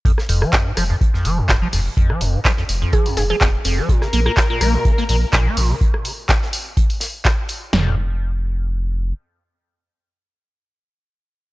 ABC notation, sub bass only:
X:1
M:4/4
L:1/8
Q:"Swing 16ths" 1/4=125
K:Fm
V:1 name="Sub bass" clef=bass
z F,,, z F,,, z F,,, F,,, F,,, | z F,,, z F,,, z F,,, F,,, F,,, | z B,,, z B,,, z B,,, B,,, B,,, | z8 |
F,,,6 z2 | z8 |]